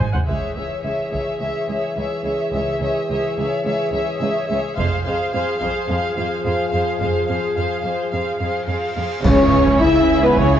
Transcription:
0.00 G#1 G#2, taiko low-mid
0.13 G#2 C5 F#5, taiko low
0.28 C#2 E3 G#4 C#5 E5, taiko, impact, triangle
0.55 C#2 G#4 C#5 E5
0.83 C#2 G#4 C#5 E5
1.11 C#2 G#4 C#5 E5, taiko
1.40 C#2 G#4 C#5 E5
1.69 C#2 G#4 C#5 E5
1.97 C#2 G#4 C#5 E5
2.24 C#2 G#4 C#5 E5
2.52 C#2 G#4 C#5 E5
2.81 C#2 G#4 C#5 E5
3.09 C#2 G#4 C#5 E5
3.37 C#2 G#4 C#5 E5
3.65 C#2 G#4 C#5 E5
3.93 C#2 G#4 C#5 E5
4.20 C#2 G#4 C#5 E5
4.49 C#2 G#4 C#5 E5
4.76 F1 F2 F3 G#4 C5 F5, taiko
5.05 F2 G#4 C5 F5
5.34 F2 G#4 C5 F5
5.60 F2 G#4 C5 F5, taiko
5.89 F2 G#4 C5 F5
6.16 F2 G#4 C5 F5
6.43 F2 G#4 C5 F5
6.71 F2 G#4 C5 F5
7.00 F1 F2 G#4 C5 F5, cymbal swell
7.28 F2 G#4 C5 F5
7.57 F2 G#4 C5 F5
7.84 F2 G#4 C5 F5
8.13 F2 G#4 C5 F5
8.40 F2 G#4 C5 F5
8.67 F2 G#4 C5 F5
8.96 F2 G#4 C5 F5
9.24 C#2 C#3 G#3 C#4 E4 G#4 C#5 G#5, concert bass drum, taiko, crash, sub drop
9.67 taiko
9.79 C#2 C#3 E4 E5
10.23 B3 B4
10.36 C#2 C#3 C#4 C#5, taiko

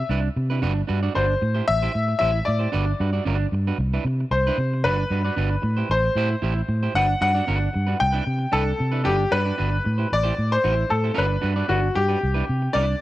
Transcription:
0.09 C2 D4 E4 B4
0.22 muted clean electric guitar stroke
0.36 C3, muted clean electric guitar stroke
0.50 D4 E4 B4
0.62 G1 D4 F#4 B4
0.75 muted clean electric guitar stroke
0.87 G2 D4 F#4 B4
1.03 D4 F#4 D5
1.15 G1 D4 F#4 B4 C5
1.29 muted clean electric guitar stroke
1.41 A2, muted clean electric guitar stroke
1.55 E4 G4 C5
1.68 A1 E5, muted clean electric guitar stroke
1.82 E4 G4 C5
1.94 A2, muted clean electric guitar stroke
2.08 muted clean electric guitar stroke
2.19 A1 E4 G4 C5 E5
2.33 muted clean electric guitar stroke
2.45 A2 D5, muted clean electric guitar stroke
2.59 E4 G4 C5
2.72 G1 D4 F#4 B4
2.88 muted clean electric guitar stroke
3.00 G2 D4 F#4 B4
3.13 D4 F#4 D5
3.25 G1 D4 F#4 B4
3.39 muted clean electric guitar stroke
3.52 G2, muted clean electric guitar stroke
3.67 D4 F#4 B4
3.78 C2, muted clean electric guitar stroke
3.94 D4 E4 B4
4.05 C3, muted clean electric guitar stroke
4.20 muted clean electric guitar stroke
4.31 C2 C5, muted clean electric guitar stroke
4.47 D4 E4 B4
4.58 C3, muted clean electric guitar stroke
4.73 muted clean electric guitar stroke
4.84 G1 D4 F#4 B4
4.99 muted clean electric guitar stroke
5.10 G2 D4 F#4 B4
5.25 D4 F#4 D5
5.36 G1 D4 F#4 B4
5.52 muted clean electric guitar stroke
5.62 A2, muted clean electric guitar stroke
5.77 E4 G4 C5
5.90 A1 C5, muted clean electric guitar stroke
6.05 muted clean electric guitar stroke
6.15 A2 E4 G4 C5
6.31 muted clean electric guitar stroke
6.42 A1 E4 G4 C5
6.56 muted clean electric guitar stroke
6.68 A2, muted clean electric guitar stroke
6.83 E4 G4 C5
6.95 G1 D4 F#4 B4 F#5
7.09 muted clean electric guitar stroke
7.21 G2 D4 F#4 B4 F#5
7.34 D4 F#4 D5
7.47 G1 D4 F#4 B4
7.61 muted clean electric guitar stroke
7.73 G2, muted clean electric guitar stroke
7.87 D4 F#4 B4
7.99 C2 G5, muted clean electric guitar stroke
8.12 D4 E4 B4
8.26 C3, muted clean electric guitar stroke
8.39 muted clean electric guitar stroke
8.52 C2 D4 E4 A4 B4
8.66 muted clean electric guitar stroke
8.78 C3, muted clean electric guitar stroke
8.92 D4 E4 B4
9.04 G1 D4 F#4 G4 B4
9.19 muted clean electric guitar stroke
9.31 G2 D4 F#4 B4
9.45 D4 F#4 D5
9.58 G1 D4 F#4 B4
9.72 muted clean electric guitar stroke
9.84 A2, muted clean electric guitar stroke
9.98 E4 G4 C5
10.10 A1 D5, muted clean electric guitar stroke
10.23 E4 G4 C5
10.36 A2, muted clean electric guitar stroke
10.51 C5, muted clean electric guitar stroke
10.64 A1 E4 G4 C5
10.77 muted clean electric guitar stroke
10.89 A2 A4, muted clean electric guitar stroke
11.04 E4 G4 C5
11.14 G1 D4 F#4 B4
11.18 B4
11.29 muted clean electric guitar stroke
11.41 G2 D4 F#4 B4
11.56 D4 F#4 D5
11.68 G1 D4 F#4 B4
11.83 muted clean electric guitar stroke
11.95 G2 G4, muted clean electric guitar stroke
12.08 D4 F#4 B4
12.21 C2, muted clean electric guitar stroke
12.34 D4 E4 B4
12.47 C3, muted clean electric guitar stroke
12.62 muted clean electric guitar stroke
12.73 C2 D4 E4 B4 D5
12.88 muted clean electric guitar stroke

